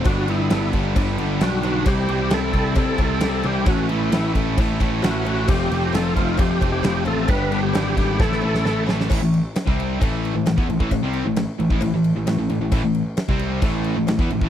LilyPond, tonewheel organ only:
\new Staff \with { instrumentName = "Tonewheel organ" } { \time 4/4 \key g \lydian \tempo 4 = 133 fis'8 e'4 r4. fis'4 | g'4 a'4 a'4. g'8 | fis'8 e'4 r4. fis'4 | g'4 a'8 f'8 g'8. g'8. a'8 |
b'8. g'8. g'8 a'4. r8 | r1 | r1 | r1 | }